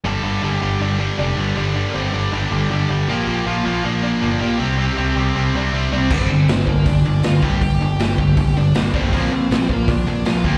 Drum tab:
CC |--------|--------|--------|--------|
HH |--------|--------|--------|--------|
SD |--------|--------|--------|--------|
BD |--------|--------|--------|--------|

CC |x-------|--------|--------|
HH |--o-o-o-|o-o-o-o-|o-o-o-o-|
SD |--o---o-|--o---o-|--o---o-|
BD |o--oo--o|o--oo--o|o--oo--o|